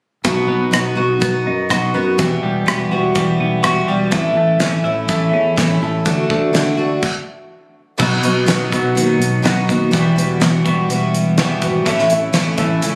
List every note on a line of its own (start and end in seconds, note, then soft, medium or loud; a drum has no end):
0.24 0.46 B1 medium
0.24 0.73 B2 medium
0.24 0.71 F#3 medium
0.24 0.71 B3 medium
0.24 0.71 D#4 medium
0.24 0.73 F#4 medium
0.24 kick loud
0.24 closed hi-hat medium
0.48 0.70 B1 medium
0.48 1.20 B3 medium
0.71 0.95 B1 medium
0.71 0.96 F#3 medium
0.71 0.96 B3 medium
0.71 0.96 D#4 medium
0.71 0.94 F#4 medium
0.71 cross-stick medium
0.71 closed hi-hat medium
0.95 1.19 B1 medium
0.95 1.20 B3 soft
0.95 1.20 D#4 soft
0.95 1.21 F#4 soft
1.20 1.43 B1 medium
1.20 1.68 F#3 medium
1.20 1.69 B3 medium
1.20 1.69 D#4 medium
1.20 1.70 F#4 medium
1.20 kick loud
1.20 closed hi-hat medium
1.47 1.68 F#2 medium
1.47 2.19 D#4 medium
1.69 1.92 B1 medium
1.69 1.94 F#3 medium
1.69 1.94 B3 medium
1.69 1.94 D#4 medium
1.69 1.93 F#4 medium
1.69 kick medium
1.69 cross-stick medium
1.69 closed hi-hat medium
1.94 2.16 F#2 medium
1.94 2.18 B3 soft
1.94 2.19 D#4 soft
1.94 2.18 F#4 soft
2.18 2.40 E1 medium
2.18 2.67 E2 medium
2.18 2.67 B2 medium
2.18 2.65 E3 medium
2.18 2.65 G3 medium
2.18 2.66 B3 medium
2.18 2.67 F#4 medium
2.18 kick medium
2.18 closed hi-hat medium
2.43 2.64 E1 medium
2.43 3.14 G3 medium
2.66 2.88 E1 medium
2.66 2.90 E3 medium
2.66 2.91 G3 medium
2.66 2.91 B3 medium
2.66 2.90 F#4 medium
2.66 cross-stick loud
2.66 closed hi-hat medium
2.91 3.12 E1 medium
2.91 3.13 E3 soft
2.91 3.15 G3 soft
2.91 3.15 B3 soft
2.91 3.15 F#4 soft
3.14 3.37 E1 medium
3.14 3.61 E3 medium
3.14 3.62 G3 medium
3.14 3.63 B3 medium
3.14 3.63 F#4 medium
3.14 kick loud
3.14 closed hi-hat medium
3.40 3.61 B1 medium
3.40 4.12 B3 medium
3.63 3.85 E1 medium
3.63 3.87 E3 medium
3.63 3.88 G3 medium
3.63 3.87 B3 medium
3.63 3.87 F#4 medium
3.63 kick medium
3.63 cross-stick medium
3.63 closed hi-hat medium
3.86 4.08 E1 medium
3.86 4.10 E3 soft
3.86 4.11 G3 soft
3.86 4.11 B3 soft
3.86 4.12 F#4 soft
4.11 4.33 A1 medium
4.11 4.60 A2 medium
4.11 4.58 E3 medium
4.11 4.60 A3 medium
4.11 4.60 C#4 medium
4.11 4.60 E4 medium
4.11 kick loud
4.11 closed hi-hat medium
4.35 4.57 A1 medium
4.35 5.08 A3 medium
4.59 4.82 A1 medium
4.59 4.84 E3 medium
4.59 4.85 A3 medium
4.59 4.84 C#4 medium
4.59 4.83 E4 medium
4.59 snare medium
4.59 closed hi-hat medium
4.84 5.06 A1 medium
4.84 5.08 A3 soft
4.84 5.09 C#4 soft
4.84 5.09 E4 medium
5.08 5.30 A1 medium
5.08 5.55 E3 medium
5.08 5.56 A3 medium
5.08 5.57 C#4 medium
5.08 5.57 E4 medium
5.08 kick loud
5.08 closed hi-hat medium
5.32 5.54 E2 medium
5.32 6.06 C#4 medium
5.56 5.79 A1 medium
5.56 5.81 E3 medium
5.56 5.82 A3 medium
5.56 5.81 C#4 medium
5.56 5.81 E4 medium
5.56 kick medium
5.56 snare loud
5.56 closed hi-hat medium
5.81 6.02 A1 medium
5.81 6.04 A3 soft
5.81 6.06 C#4 soft
5.81 6.06 E4 soft
6.05 6.27 D2 medium
6.05 6.52 D3 medium
6.05 6.53 A3 medium
6.05 6.54 D4 medium
6.05 6.54 F#4 medium
6.05 kick loud
6.05 closed hi-hat medium
6.30 6.51 D2 medium
6.30 7.03 A3 medium
6.30 kick medium
6.53 6.75 D2 medium
6.53 6.78 D3 medium
6.53 6.78 A3 medium
6.53 6.78 D4 medium
6.53 6.76 F#4 medium
6.53 snare medium
6.53 closed hi-hat medium
6.77 6.99 D2 medium
6.77 7.03 A3 soft
6.77 7.03 D4 soft
6.77 7.02 F#4 medium
7.02 kick loud
7.02 crash medium
7.98 8.22 B1 medium
7.98 8.23 B2 medium
7.98 8.23 F#3 medium
7.98 8.23 B3 medium
7.98 8.23 D#4 medium
7.98 8.22 F#4 medium
7.98 kick loud
7.98 crash medium
8.23 8.47 B1 medium
8.23 8.46 B3 soft
8.23 8.46 D#4 medium
8.23 8.47 F#4 medium
8.23 closed hi-hat medium
8.46 8.71 B1 medium
8.46 8.71 B2 medium
8.46 8.71 F#3 medium
8.46 8.71 B3 medium
8.46 8.71 D#4 medium
8.46 8.70 F#4 medium
8.46 snare loud
8.46 closed hi-hat medium
8.71 8.95 B1 medium
8.71 9.42 B2 medium
8.71 9.43 F#3 medium
8.71 8.95 B3 soft
8.71 8.95 D#4 soft
8.71 8.96 F#4 soft
8.71 kick medium
8.71 closed hi-hat medium
8.95 9.18 D#2 medium
8.95 9.42 F#3 medium
8.95 9.42 B3 medium
8.95 9.42 D#4 medium
8.95 9.43 F#4 medium
8.95 closed hi-hat medium
9.19 9.43 B1 medium
9.19 closed hi-hat medium
9.42 9.67 B1 medium
9.42 9.67 B2 medium
9.42 9.68 F#3 medium
9.42 9.68 B3 medium
9.42 9.67 D#4 medium
9.42 9.66 F#4 medium
9.42 snare loud
9.42 closed hi-hat medium
9.67 9.92 D#2 medium
9.67 9.91 B3 soft
9.67 9.92 D#4 soft
9.67 9.91 F#4 medium
9.67 kick medium
9.67 closed hi-hat medium
9.91 10.15 E1 medium
9.91 10.16 E2 medium
9.91 10.16 B2 medium
9.91 10.16 E3 medium
9.91 10.16 G3 medium
9.91 10.16 B3 medium
9.91 10.15 F#4 medium
9.91 kick loud
9.91 closed hi-hat medium
9.97 10.63 F#4 medium
10.16 10.39 E1 medium
10.16 10.40 E3 soft
10.16 10.40 G3 soft
10.16 10.40 B3 medium
10.16 10.40 F#4 medium
10.16 closed hi-hat medium
10.40 10.64 E1 medium
10.40 10.65 E2 medium
10.40 10.65 B2 medium
10.40 10.65 E3 medium
10.40 10.65 G3 medium
10.40 10.64 B3 medium
10.40 10.63 F#4 medium
10.40 snare loud
10.40 closed hi-hat medium
10.64 10.88 E1 medium
10.64 11.37 B2 medium
10.64 10.88 E3 soft
10.64 10.89 G3 soft
10.64 10.89 B3 medium
10.64 10.89 F#4 soft
10.64 kick medium
10.64 closed hi-hat medium
10.68 11.37 E2 medium
10.89 11.35 E1 medium
10.89 11.38 E3 medium
10.89 11.38 G3 medium
10.89 11.38 B3 medium
10.89 11.38 F#4 medium
10.89 closed hi-hat medium
11.14 closed hi-hat medium
11.38 11.61 E2 medium
11.38 11.62 E2 medium
11.38 11.62 B2 medium
11.38 11.62 E3 medium
11.38 11.62 G3 medium
11.38 11.62 B3 medium
11.38 11.61 F#4 medium
11.38 snare loud
11.38 closed hi-hat medium
11.62 11.85 G#1 medium
11.62 11.84 E3 soft
11.62 11.86 G3 soft
11.62 11.86 B3 soft
11.62 11.86 F#4 medium
11.62 kick medium
11.62 closed hi-hat medium
11.86 12.09 A1 medium
11.86 12.10 A2 medium
11.86 12.10 E3 medium
11.86 12.10 A3 medium
11.86 12.10 C#4 medium
11.86 12.09 E4 medium
11.86 kick loud
11.86 closed hi-hat medium
11.99 snare soft
12.10 12.33 A1 medium
12.10 12.33 A3 soft
12.10 12.33 C#4 medium
12.10 12.33 E4 medium
12.10 closed hi-hat medium
12.33 12.57 A1 medium
12.33 12.57 A2 medium
12.33 12.58 E3 medium
12.33 12.58 A3 medium
12.33 12.58 C#4 loud
12.33 12.57 E4 medium
12.33 snare loud
12.33 closed hi-hat medium
12.58 12.81 A1 medium
12.58 12.95 A2 medium
12.58 12.95 E3 medium
12.58 12.81 A3 soft
12.58 12.82 C#4 soft
12.58 12.82 E4 medium
12.58 kick medium
12.58 closed hi-hat medium
12.82 12.95 C#2 medium
12.82 12.95 E3 medium
12.82 12.95 A3 medium
12.82 12.95 C#4 medium
12.82 12.95 E4 medium
12.82 closed hi-hat medium